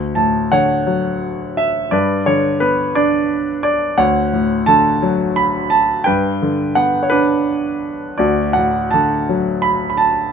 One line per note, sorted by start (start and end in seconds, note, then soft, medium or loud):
0.00 1.89 D2 soft
0.15 1.54 A2 soft
0.15 0.52 A5 medium
0.52 1.89 D3 soft
0.52 1.54 C#5 medium
0.52 1.61 F#5 medium
0.87 1.90 F#3 soft
1.57 1.90 E5 medium
1.91 3.94 G2 medium
1.91 2.59 B4 soft
1.91 2.28 D5 medium
2.26 3.60 D3 soft
2.26 2.62 C#5 medium
2.60 3.94 B3 soft
2.60 2.93 B4 medium
2.95 3.95 D4 soft
2.95 3.60 D5 medium
3.63 3.96 D5 medium
3.98 6.02 D2 medium
3.98 4.98 C#5 soft
3.98 4.69 F#5 medium
4.33 5.68 A2 soft
4.66 6.03 D3 medium
4.66 5.39 A5 medium
5.02 6.04 F#3 medium
5.36 5.72 B5 medium
5.70 6.07 A5 medium
6.04 8.16 G2 medium
6.04 7.07 B4 medium
6.04 6.71 G5 medium
6.42 7.79 D3 soft
6.75 8.16 B3 soft
6.75 7.02 F#5 medium
7.03 7.10 C#5 soft
7.10 8.16 D4 soft
7.10 7.87 B4 medium
8.18 10.31 D2 soft
8.18 9.25 F#4 soft
8.18 8.57 D5 medium
8.53 9.96 A2 soft
8.53 8.93 F#5 medium
8.91 10.31 D3 soft
8.91 9.66 A5 medium
9.29 10.32 F#3 soft
9.62 9.88 B5 medium
9.90 9.98 B5 medium
9.97 10.32 A5 medium